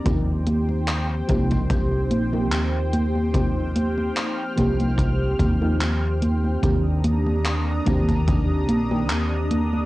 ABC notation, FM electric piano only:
X:1
M:4/4
L:1/16
Q:"Swing 16ths" 1/4=73
K:Cm
V:1 name="FM electric piano"
[F,B,CEG]6 [F,B,CEG]4- [F,B,CEG] [F,B,CEG] z4 | [F,B,CEG]6 [F,B,CEG]4- [F,B,CEG] [F,B,CEG] z4 | [E,B,CDG]6 [E,B,CDG]4- [E,B,CDG] [E,B,CDG] z4 |]